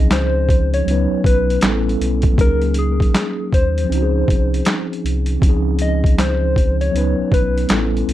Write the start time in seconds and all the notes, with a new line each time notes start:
Already playing: C#2 F3 C4 C#4 D#4 G#4
0.11 C5, snare, clap, closed hi-hat
0.49 kick, closed hi-hat
0.74 C#5, closed hi-hat
0.85 C#2 F#3 B3 C#4, closed hi-hat
0.90 D#4 B4
1.10 B1
1.24 B1 B4, kick, closed hi-hat
1.50 closed hi-hat
1.61 A1 G3 B3 C#4, snare, clap, closed hi-hat
1.66 E4 A4
1.89 closed hi-hat
2.00 B1, closed hi-hat
2.22 kick, closed hi-hat
2.32 F#3 A#3
2.38 C#2 C#4 D#4 A#4, kick, closed hi-hat
2.44 G#4
2.62 closed hi-hat
2.74 closed hi-hat
2.79 G#4
3.00 kick, closed hi-hat
3.15 snare, clap, closed hi-hat
3.53 D#2 C5, kick, closed hi-hat
3.78 closed hi-hat
3.84 F3 C4
3.90 C#2 C#4 D#4, closed hi-hat
3.96 F#4
4.02 G#4
4.28 C2, kick, closed hi-hat
4.54 closed hi-hat
4.65 snare, clap, closed hi-hat
4.93 closed hi-hat
5.04 C2, closed hi-hat
5.26 closed hi-hat
5.37 E3 C4
5.42 C#2 F3 C#4, kick, closed hi-hat
5.46 D#4 G#4
5.79 D#5, closed hi-hat
6.04 kick, closed hi-hat
6.19 C5, snare, clap, closed hi-hat
6.56 kick, closed hi-hat
6.81 C#5, closed hi-hat
6.91 C#2 F#3 B3 C#4
6.96 D#4 B4, closed hi-hat
7.18 B1
7.32 B1 B4, kick, closed hi-hat
7.58 closed hi-hat
7.66 A1 G3 B3 C#4, snare, closed hi-hat
7.71 E4 A4, clap
7.97 closed hi-hat
8.08 B1, closed hi-hat